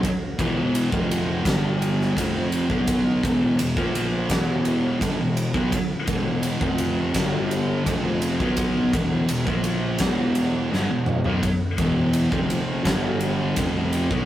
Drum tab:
RD |x-x-x-x-x-x-x-x-|x-x-x-x-x-x-x-x-|x-x-x-x-x-x-x-x-|x-x-x-x-x-x-----|
SD |--------o--o----|--------o-------|--------o-------|--------o---o---|
T2 |----------------|----------------|----------------|--------------o-|
FT |----------------|----------------|----------------|---------------o|
BD |o-o--o--o---o--o|o-o--o--o---o--o|o-o--o--o---o--o|o-o--o--o-------|

RD |x-x-x-x-x-x-x-x-|
SD |--------o-------|
T2 |----------------|
FT |----------------|
BD |o-o--o--o---o--o|